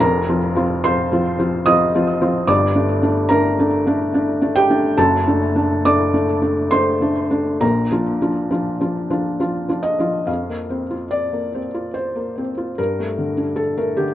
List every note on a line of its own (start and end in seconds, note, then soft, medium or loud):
0.00 0.28 F1 medium
0.00 0.29 F2 medium
0.00 0.80 A#4 medium
0.00 0.84 A#5 medium
0.29 0.54 F3 medium
0.29 0.54 C4 medium
0.29 0.54 F4 medium
0.55 0.80 F3 medium
0.55 0.81 C4 medium
0.55 0.81 F4 medium
0.84 1.09 F3 medium
0.84 1.09 C4 medium
0.84 1.09 F4 medium
0.84 1.63 C5 medium
0.84 1.66 C6 loud
1.12 1.36 F3 medium
1.12 1.36 C4 medium
1.12 1.37 F4 medium
1.39 1.64 F3 medium
1.39 1.64 C4 medium
1.39 1.64 F4 medium
1.66 1.91 F3 medium
1.66 1.91 C4 medium
1.66 1.91 F4 medium
1.66 2.45 D#5 medium
1.66 2.48 D#6 loud
1.95 2.19 F3 medium
1.95 2.20 C4 medium
1.95 2.20 F4 medium
2.21 2.46 F3 medium
2.21 2.46 C4 medium
2.21 2.46 F4 medium
2.48 2.74 G1 medium
2.48 2.75 G2 medium
2.48 3.26 D5 medium
2.48 3.30 D6 loud
2.75 3.00 A3 medium
2.75 3.00 D4 medium
3.02 3.27 A3 medium
3.02 3.28 D4 medium
3.29 3.55 A3 medium
3.29 3.56 D4 medium
3.29 4.51 A#4 medium
3.29 4.54 A#5 medium
3.59 3.84 A3 medium
3.59 3.84 D4 medium
3.86 4.11 A3 medium
3.86 4.12 D4 medium
4.14 4.39 A3 medium
4.14 4.39 D4 medium
4.42 4.66 A3 medium
4.42 4.67 D4 medium
4.56 4.95 G4 medium
4.56 4.97 G5 loud
4.70 4.94 A3 medium
4.70 4.95 D4 medium
4.98 5.25 F#1 medium
4.98 5.25 F#2 medium
4.98 5.81 A4 medium
4.98 5.85 A5 loud
5.27 5.53 A3 medium
5.27 5.53 D4 medium
5.56 5.82 A3 medium
5.56 5.82 D4 medium
5.85 6.11 A3 medium
5.85 6.11 D4 medium
5.85 6.68 D5 medium
5.85 6.72 D6 loud
6.14 6.40 A3 medium
6.14 6.40 D4 medium
6.42 6.68 A3 medium
6.42 6.68 D4 medium
6.71 6.98 A3 medium
6.71 6.98 D4 medium
6.71 7.57 C5 medium
6.71 7.60 C6 medium
7.01 7.28 A3 medium
7.01 7.28 D4 medium
7.30 7.58 A3 soft
7.30 7.58 D4 medium
7.60 7.90 A#1 medium
7.60 7.91 A#2 medium
7.60 9.37 A#4 medium
7.60 9.40 A#5 medium
7.91 8.19 F3 soft
7.91 8.19 D4 soft
7.91 8.19 F4 medium
8.21 8.48 F3 soft
8.21 8.48 D4 soft
8.21 8.49 F4 medium
8.51 8.78 F3 soft
8.51 8.78 D4 soft
8.51 8.78 F4 medium
8.81 9.07 F3 soft
8.81 9.08 D4 soft
8.81 9.08 F4 soft
9.10 9.37 F3 soft
9.10 9.37 D4 soft
9.10 9.37 F4 medium
9.40 9.67 F3 soft
9.40 9.67 D4 soft
9.40 9.67 F4 medium
9.69 9.96 F3 soft
9.69 9.96 D4 soft
9.69 9.96 F4 medium
9.83 10.27 D#5 medium
9.99 10.25 F3 soft
9.99 10.25 D4 soft
9.99 10.25 F4 soft
10.27 12.74 F2 medium
10.27 11.11 F5 medium
10.49 10.83 A#3 soft
10.70 11.03 C4 soft
10.91 11.57 F4 soft
11.11 11.95 D5 medium
11.33 11.66 A#3 soft
11.55 11.87 C4 soft
11.74 12.41 F4 soft
11.94 12.77 C5 medium
12.16 12.49 A#3 soft
12.38 12.70 C4 soft
12.58 12.78 F4 soft
12.78 14.14 G2 medium
12.78 13.59 A#4 medium
12.99 13.31 A3 soft
13.18 13.51 D3 soft
13.38 14.04 D4 soft
13.56 13.78 A4 medium
13.78 14.12 A3 soft
13.78 13.99 A#4 medium
13.97 14.14 D3 soft
13.97 14.14 G4 medium